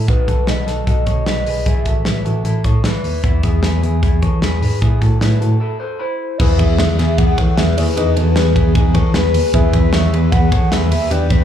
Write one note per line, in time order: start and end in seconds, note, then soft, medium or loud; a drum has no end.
0.08 0.24 B1 medium
0.08 0.28 D#4 medium
0.08 0.27 F#4 medium
0.08 0.50 B4 medium
0.08 kick loud
0.08 closed hi-hat medium
0.28 0.44 B1 medium
0.28 0.47 F#4 medium
0.28 0.47 A4 medium
0.28 kick medium
0.28 closed hi-hat medium
0.47 0.64 B1 medium
0.47 0.67 F#4 medium
0.47 0.67 B4 medium
0.47 0.88 D#5 medium
0.47 snare medium
0.47 closed hi-hat medium
0.67 0.84 B1 medium
0.67 0.86 F#4 medium
0.67 0.86 A4 medium
0.67 snare soft
0.67 closed hi-hat medium
0.87 1.03 B1 medium
0.87 1.07 F#4 medium
0.87 1.06 A4 medium
0.87 1.69 D#5 loud
0.87 kick medium
0.87 closed hi-hat medium
1.06 1.23 B2 medium
1.06 1.27 A4 soft
1.06 1.26 C#5 medium
1.06 kick medium
1.06 closed hi-hat medium
1.26 1.43 B1 medium
1.26 1.46 F#4 medium
1.26 1.45 B4 medium
1.26 snare loud
1.26 closed hi-hat medium
1.46 1.66 B1 medium
1.46 1.65 G#4 soft
1.46 1.66 B4 medium
1.46 open hi-hat medium
1.66 1.82 A1 medium
1.66 1.86 E4 medium
1.66 1.86 G#4 medium
1.66 2.46 E5 loud
1.66 kick loud
1.66 closed hi-hat medium
1.86 2.02 A1 medium
1.86 2.06 F#4 medium
1.86 2.05 A4 medium
1.86 kick medium
1.86 closed hi-hat medium
2.05 2.22 A1 medium
2.05 2.26 E4 medium
2.05 2.24 B4 medium
2.05 snare loud
2.05 closed hi-hat medium
2.25 2.41 A1 medium
2.25 2.45 F#4 medium
2.25 2.44 A4 medium
2.25 closed hi-hat medium
2.45 2.65 A1 medium
2.45 2.64 E4 medium
2.45 2.64 A4 medium
2.45 closed hi-hat medium
2.64 2.81 A2 medium
2.64 2.84 A4 medium
2.64 2.84 C#5 medium
2.64 kick medium
2.64 closed hi-hat medium
2.84 3.04 A1 medium
2.84 3.22 E4 medium
2.84 3.22 B4 medium
2.84 snare loud
2.84 closed hi-hat medium
3.04 3.20 D#2 medium
3.04 open hi-hat medium
3.24 3.40 E2 medium
3.24 3.43 B3 medium
3.24 3.43 E4 medium
3.24 kick loud
3.24 closed hi-hat medium
3.43 3.60 E2 medium
3.43 3.63 E4 medium
3.43 3.63 G#4 medium
3.43 kick medium
3.43 closed hi-hat medium
3.63 3.80 E2 medium
3.63 3.82 G#4 medium
3.63 3.83 B4 medium
3.63 snare loud
3.63 closed hi-hat medium
3.83 3.99 E2 medium
3.83 4.02 E4 soft
3.83 4.01 G#4 medium
3.83 closed hi-hat medium
4.03 4.19 E2 medium
4.03 4.22 E4 medium
4.03 4.23 G#4 medium
4.03 kick medium
4.03 closed hi-hat medium
4.22 4.42 E3 medium
4.22 4.42 A4 soft
4.22 4.42 C#5 medium
4.22 kick medium
4.22 closed hi-hat medium
4.42 4.62 E2 medium
4.42 4.62 G#4 medium
4.42 4.61 B4 medium
4.42 snare medium
4.42 closed hi-hat medium
4.62 4.78 G#2 medium
4.62 4.80 G#4 soft
4.62 4.82 B4 medium
4.62 open hi-hat medium
4.82 4.98 A2 medium
4.82 5.02 E4 medium
4.82 5.01 G#4 medium
4.82 kick loud
4.82 closed hi-hat medium
5.01 5.18 A2 medium
5.01 5.22 F#4 medium
5.01 5.21 A4 medium
5.01 kick medium
5.01 closed hi-hat medium
5.21 5.37 A2 medium
5.21 5.41 E4 medium
5.21 5.40 B4 medium
5.21 snare loud
5.21 closed hi-hat medium
5.41 5.57 A2 medium
5.41 5.61 F#4 soft
5.41 5.59 A4 medium
5.41 closed hi-hat medium
5.60 5.81 E4 medium
5.60 5.79 A4 medium
5.80 6.00 A4 medium
5.80 6.00 C5 medium
5.99 6.37 E4 medium
5.99 6.40 C5 medium
5.99 6.37 B5 medium
6.38 6.56 E2 loud
6.38 7.75 B3 medium
6.38 6.60 B3 medium
6.38 6.58 E4 loud
6.38 7.75 E4 medium
6.38 7.75 G#4 medium
6.38 7.75 B4 medium
6.38 6.77 E5 loud
6.38 kick loud
6.38 crash loud
6.59 6.75 E2 loud
6.59 6.79 E4 medium
6.59 6.78 G#4 medium
6.59 kick medium
6.59 ride medium
6.78 6.95 E2 loud
6.78 6.97 G#4 medium
6.78 6.99 B4 medium
6.78 7.19 E5 loud
6.78 snare loud
6.78 ride medium
6.98 7.15 E2 loud
6.98 7.18 E4 medium
6.98 7.17 G#4 medium
6.98 snare soft
6.98 ride medium
7.18 7.34 E2 medium
7.18 7.38 E4 medium
7.18 7.38 G#4 medium
7.18 7.58 F#5 loud
7.18 kick loud
7.18 ride medium
7.38 7.54 E3 loud
7.38 7.58 A4 medium
7.38 7.57 C#5 medium
7.38 kick medium
7.38 ride medium
7.57 7.74 E2 loud
7.57 7.77 G#4 medium
7.57 7.76 B4 medium
7.57 7.76 E5 loud
7.57 snare loud
7.57 ride medium
7.77 7.94 D#2 loud
7.77 7.95 B3 medium
7.77 7.97 E4 soft
7.77 7.96 G#4 soft
7.77 7.95 G#4 medium
7.77 7.97 B4 medium
7.77 7.97 C#5 medium
7.77 7.86 E5 medium
7.77 open hi-hat medium
7.77 ride medium
7.96 8.13 E2 loud
7.96 9.51 B3 medium
7.96 9.51 D#4 medium
7.96 8.17 D#4 medium
7.96 8.16 G#4 medium
7.96 9.51 G#4 medium
7.96 9.51 B4 medium
7.96 8.19 D#5 loud
7.96 hi-hat pedal medium
7.96 ride medium
8.16 8.33 E2 loud
8.16 8.36 F#4 medium
8.16 8.35 A4 medium
8.16 8.56 B4 medium
8.16 ride medium
8.36 8.53 E2 loud
8.36 8.55 G#4 medium
8.36 8.55 B4 medium
8.36 snare loud
8.36 ride medium
8.56 8.72 E2 loud
8.56 8.76 E4 medium
8.56 8.74 G#4 medium
8.56 kick medium
8.56 ride medium
8.75 8.91 E2 loud
8.75 8.95 D#4 medium
8.75 8.95 G#4 medium
8.75 kick loud
8.75 ride medium
8.94 9.15 E3 loud
8.94 9.15 A4 medium
8.94 9.14 C#5 medium
8.94 kick medium
8.94 ride medium
9.14 9.31 E2 loud
9.14 9.52 G#4 medium
9.14 9.51 B4 medium
9.14 9.52 B4 medium
9.14 snare loud
9.14 ride medium
9.34 9.50 D#2 loud
9.34 open hi-hat medium
9.34 ride medium
9.54 9.70 E2 loud
9.54 11.08 B3 medium
9.54 11.08 E4 medium
9.54 9.73 E4 medium
9.54 9.73 G#4 loud
9.54 11.08 G#4 medium
9.54 11.08 B4 medium
9.54 9.91 E5 loud
9.54 kick loud
9.54 hi-hat pedal medium
9.54 ride medium
9.73 9.90 E2 loud
9.73 9.93 G#4 medium
9.73 9.93 B4 medium
9.73 kick medium
9.73 ride medium
9.93 10.09 E2 loud
9.93 10.12 G#4 medium
9.93 10.12 C#5 medium
9.93 10.33 E5 loud
9.93 snare loud
9.93 ride medium
10.13 10.29 E2 loud
10.13 10.32 G#4 medium
10.13 10.31 B4 medium
10.13 ride medium
10.31 10.48 E2 loud
10.31 10.52 G#4 medium
10.31 10.52 B4 medium
10.31 10.73 F#5 loud
10.31 kick loud
10.31 ride medium
10.52 10.68 E3 medium
10.52 10.72 A4 medium
10.52 10.71 C#5 medium
10.52 kick medium
10.52 ride medium
10.71 10.88 E2 loud
10.71 10.91 G#4 medium
10.71 10.90 B4 medium
10.71 11.13 E5 loud
10.71 snare loud
10.71 ride medium
10.91 11.07 D#2 medium
10.91 11.10 G#4 medium
10.91 11.11 B4 medium
10.91 open hi-hat medium
10.91 ride medium
11.11 11.27 E2 loud
11.11 11.44 B3 medium
11.11 11.44 D4 medium
11.11 11.31 D4 medium
11.11 11.30 G4 loud
11.11 11.44 G4 medium
11.11 11.44 B4 medium
11.11 11.33 D5 loud
11.11 hi-hat pedal medium
11.11 ride medium
11.30 11.44 E2 loud
11.30 11.44 G4 medium
11.30 11.44 B4 medium
11.30 kick medium
11.30 ride medium